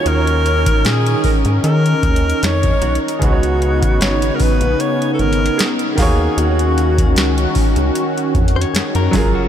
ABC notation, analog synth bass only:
X:1
M:4/4
L:1/16
Q:"Swing 16ths" 1/4=76
K:Ebm
V:1 name="Analog synth bass" clef=bass
E,,4 B,,2 z A,, E,2 E,,2 F,,2 C,, z | D,,4 A,,,2 z B,,, z2 A,,,2 z2 E,,2 | E,,4 D,,2 z D,, z2 F,,2 G,, G,, G,,,2 |]